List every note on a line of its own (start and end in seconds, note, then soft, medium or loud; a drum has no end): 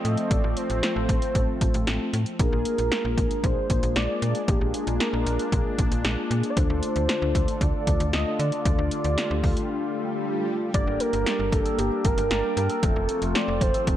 0.00 2.36 F3 medium
0.00 2.09 A3 medium
0.00 2.36 A3 medium
0.00 2.09 C4 medium
0.00 2.36 C4 medium
0.00 2.09 F4 medium
0.00 2.09 A4 medium
0.00 0.32 D#5 loud
0.05 0.17 A2 loud
0.05 closed hi-hat medium
0.17 closed hi-hat soft
0.31 0.43 A1 loud
0.31 0.58 D5 loud
0.31 kick loud
0.31 closed hi-hat medium
0.44 0.56 A1 medium
0.57 0.82 C5 medium
0.57 closed hi-hat medium
0.70 0.82 A1 medium
0.70 closed hi-hat soft
0.83 2.09 C5 medium
0.83 snare loud
0.83 closed hi-hat medium
0.96 1.08 A1 medium
1.09 1.21 A1 loud
1.09 kick medium
1.09 closed hi-hat medium
1.22 closed hi-hat medium
1.35 1.47 A1 loud
1.35 kick medium
1.35 closed hi-hat medium
1.61 1.73 A1 loud
1.61 kick medium
1.61 closed hi-hat medium
1.74 1.86 A1 loud
1.74 closed hi-hat medium
1.87 1.99 A1 loud
1.87 snare loud
1.87 closed hi-hat medium
2.13 2.25 A2 loud
2.13 closed hi-hat medium
2.26 closed hi-hat soft
2.39 2.51 A#1 loud
2.39 6.53 G#3 medium
2.39 6.53 A#3 medium
2.39 10.70 D4 medium
2.39 6.53 D4 medium
2.39 6.53 F4 medium
2.39 6.53 G#4 medium
2.39 3.45 A#4 loud
2.39 kick loud
2.39 closed hi-hat medium
2.53 2.64 A#1 loud
2.65 closed hi-hat medium
2.78 2.90 A#1 medium
2.78 closed hi-hat medium
2.92 snare loud
2.92 closed hi-hat medium
3.05 3.17 A#1 loud
3.18 3.29 A#1 loud
3.18 kick medium
3.18 closed hi-hat medium
3.31 closed hi-hat soft
3.44 3.56 A#1 loud
3.44 3.95 C5 loud
3.44 kick medium
3.44 closed hi-hat medium
3.70 3.82 A#1 loud
3.70 kick medium
3.70 closed hi-hat medium
3.83 3.95 A#1 loud
3.83 closed hi-hat medium
3.96 4.08 A#1 loud
3.96 4.50 D5 loud
3.96 snare loud
3.96 closed hi-hat medium
4.22 4.34 A#2 loud
4.22 closed hi-hat medium
4.35 closed hi-hat soft
4.48 4.60 A#1 loud
4.48 4.76 G4 loud
4.48 kick loud
4.48 closed hi-hat medium
4.61 4.73 A#1 medium
4.74 5.00 G#4 medium
4.74 closed hi-hat medium
4.87 4.99 A#1 loud
4.87 closed hi-hat medium
5.00 6.27 A#4 loud
5.00 snare loud
5.00 closed hi-hat medium
5.13 5.25 A#1 loud
5.26 5.38 A#1 loud
5.26 closed hi-hat medium
5.39 closed hi-hat medium
5.52 5.64 A#1 loud
5.52 kick medium
5.52 closed hi-hat medium
5.79 5.90 A#1 medium
5.79 kick medium
5.79 closed hi-hat medium
5.92 6.03 A#1 medium
5.92 closed hi-hat medium
6.05 6.17 A#1 loud
6.05 snare loud
6.05 closed hi-hat medium
6.31 6.43 A#2 loud
6.31 closed hi-hat medium
6.43 closed hi-hat soft
6.50 6.58 D5 medium
6.57 6.69 D2 loud
6.57 10.70 D3 medium
6.57 10.70 A3 medium
6.57 10.70 D4 medium
6.57 10.70 F4 medium
6.57 8.63 A4 medium
6.57 10.70 A4 medium
6.57 7.63 C5 loud
6.57 kick loud
6.57 closed hi-hat medium
6.70 6.82 D2 loud
6.83 closed hi-hat medium
6.96 7.08 D2 loud
6.96 closed hi-hat medium
7.09 snare loud
7.09 closed hi-hat medium
7.22 7.34 D2 loud
7.35 7.47 D2 loud
7.35 kick medium
7.35 closed hi-hat medium
7.48 closed hi-hat medium
7.61 7.73 D2 loud
7.61 8.13 D5 loud
7.61 kick medium
7.61 closed hi-hat medium
7.87 7.99 D2 medium
7.87 kick medium
7.87 closed hi-hat medium
8.00 8.12 D2 loud
8.00 closed hi-hat medium
8.13 8.25 D2 loud
8.13 8.41 D#5 loud
8.13 snare loud
8.13 closed hi-hat medium
8.39 8.51 D3 loud
8.39 9.96 D5 loud
8.39 closed hi-hat medium
8.52 closed hi-hat soft
8.65 8.77 D2 loud
8.65 10.72 G4 medium
8.65 kick loud
8.65 closed hi-hat medium
8.65 swell medium
8.78 8.90 D2 medium
8.91 closed hi-hat medium
9.04 9.16 D2 loud
9.04 closed hi-hat medium
9.18 snare loud
9.18 closed hi-hat medium
9.31 9.43 D2 loud
9.44 9.56 D2 loud
9.44 kick medium
9.44 open hi-hat soft
9.57 closed hi-hat soft
10.74 10.86 G1 loud
10.74 12.88 D3 loud
10.74 12.81 G3 medium
10.74 12.81 A#3 medium
10.74 12.79 A#3 medium
10.74 12.81 D4 medium
10.74 12.79 D4 medium
10.74 12.79 G4 medium
10.74 12.79 A#4 medium
10.74 11.02 D5 loud
10.74 kick loud
10.74 closed hi-hat medium
10.87 10.99 G1 medium
10.87 11.90 G3 medium
11.00 12.04 A#3 medium
11.00 11.54 A#4 loud
11.00 closed hi-hat medium
11.13 11.25 G1 loud
11.13 12.17 G4 medium
11.13 closed hi-hat medium
11.26 12.30 D5 medium
11.26 snare loud
11.26 closed hi-hat medium
11.39 11.51 G1 loud
11.39 12.43 G5 medium
11.52 11.64 G1 loud
11.52 11.80 A4 medium
11.52 12.56 A#5 medium
11.52 kick medium
11.52 closed hi-hat medium
11.65 12.70 E6 medium
11.65 closed hi-hat medium
11.79 11.90 G1 loud
11.79 12.04 G4 loud
11.79 closed hi-hat medium
11.92 12.88 G3 medium
12.05 12.17 G1 loud
12.05 13.15 A#3 medium
12.05 12.53 A#4 loud
12.05 kick medium
12.05 closed hi-hat medium
12.18 12.30 G1 loud
12.18 13.97 G4 medium
12.18 closed hi-hat medium
12.31 12.43 G1 loud
12.31 13.97 D5 medium
12.31 snare loud
12.31 closed hi-hat medium
12.44 13.97 G5 medium
12.57 12.69 G2 loud
12.57 12.84 A#4 loud
12.57 13.15 A#5 medium
12.57 closed hi-hat medium
12.70 13.02 E6 medium
12.70 closed hi-hat soft
12.83 12.95 F1 loud
12.83 13.97 C3 loud
12.83 13.97 F3 medium
12.83 13.97 A3 medium
12.83 13.97 C4 medium
12.83 13.97 F4 medium
12.83 13.37 A4 loud
12.83 13.97 A4 medium
12.83 kick loud
12.83 closed hi-hat medium
12.96 13.08 F1 loud
12.96 13.97 F3 medium
13.09 13.97 A3 medium
13.09 closed hi-hat medium
13.22 13.34 F1 medium
13.22 13.80 F4 medium
13.22 closed hi-hat medium
13.35 13.97 C5 medium
13.35 13.63 D5 loud
13.35 snare loud
13.35 closed hi-hat medium
13.48 13.60 F1 loud
13.48 13.80 F5 medium
13.61 13.73 F1 medium
13.61 13.97 C5 medium
13.61 13.97 A5 medium
13.61 kick loud
13.61 closed hi-hat medium
13.74 13.97 E6 medium
13.74 closed hi-hat medium
13.87 13.97 F1 loud
13.87 kick medium
13.87 closed hi-hat medium